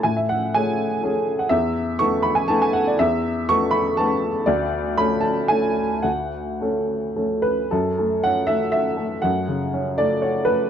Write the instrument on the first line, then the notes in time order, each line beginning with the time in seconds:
upright piano
0.03 A2 G#5
0.17 E5
0.29 F#5
0.55 A3 C#4 G#4 G#5
1.03 A3 C#4 G#4
1.39 F#5
1.49 E2 E5
1.99 A3 B3 A4 C#6
2.22 B5
2.35 G#5
2.48 A3 B3 A4 A5
2.62 G#5
2.73 F#5
2.87 D5
2.99 E2 E5
3.49 A3 B3 A4 C#6
3.71 B5
3.97 A3 B3 A4 A5
4.46 D2 D5
4.97 A3 C#4 A4 B5
5.21 A5
5.48 A3 C#4 A4 G#5
6.02 D2 F#5
6.61 A3 C#4 A4
7.16 A3 C#4 A4
7.42 B4
7.71 F#2 A4
7.98 A3
8.23 C#4 F#5
8.47 A3 E5
8.72 F#4 E5
8.97 A3
9.22 F#2 F#5
9.48 C#3
9.74 C#4
9.98 A3 D5
10.22 F#4 C#5
10.45 A3 B4